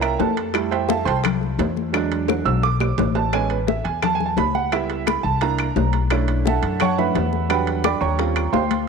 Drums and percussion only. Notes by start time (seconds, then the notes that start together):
0.02 high conga, high timbale, claves
0.20 high bongo, low bongo, high conga, low timbale
0.37 high bongo, high timbale
0.54 high bongo, high conga, high timbale, claves
0.71 high bongo, high conga, high timbale
0.89 high bongo, high conga, low timbale
1.08 high timbale
1.24 high bongo, high conga, low conga, high timbale, claves
1.41 high bongo, high conga
1.59 high bongo, low bongo, high conga, high timbale, low timbale
1.77 high bongo, high conga
1.94 high bongo, high conga, high timbale, claves
2.12 high bongo, high conga, high timbale
2.28 high bongo, high conga, high timbale, claves
2.46 high conga, high timbale
2.63 high bongo, high conga
2.80 high bongo, high conga, low timbale, claves
2.98 high bongo, low bongo, high conga, low timbale
3.15 high bongo, low timbale
3.33 high bongo, high conga, high timbale, claves
3.50 high bongo, high conga, high timbale
3.67 high bongo, high conga, low timbale
3.85 high timbale
4.02 high bongo, high conga, low conga, high timbale, claves
4.20 high bongo, high conga, low conga
4.37 high bongo, low bongo, high conga, high timbale, low timbale
4.55 high bongo, high conga
4.72 high bongo, high conga, high timbale, claves
4.90 high bongo, high conga, high timbale
5.07 high bongo, high conga, high timbale, low timbale, claves
5.25 high conga
5.41 high bongo, high conga, high timbale
5.59 high bongo, high conga, high timbale, claves
5.76 high bongo, low bongo, high conga, low timbale
5.93 high bongo, high timbale
6.10 high bongo, high conga, high timbale, claves
6.28 high bongo, high conga, high timbale
6.45 high bongo, high conga, low timbale
6.63 high timbale
6.80 high bongo, high conga, low conga, high timbale, claves
6.98 high bongo, high conga, low conga
7.15 high bongo, low bongo, high conga, high timbale, low timbale
7.33 high bongo, high conga
7.50 high bongo, high conga, high timbale, claves
7.67 high bongo, high conga, high timbale
7.84 high bongo, high conga, high timbale, low timbale, claves
8.02 high conga
8.19 high bongo, high conga, high timbale
8.36 high bongo, high conga, high timbale, claves
8.53 high bongo, low bongo, high conga, low timbale
8.71 high bongo, high conga, high timbale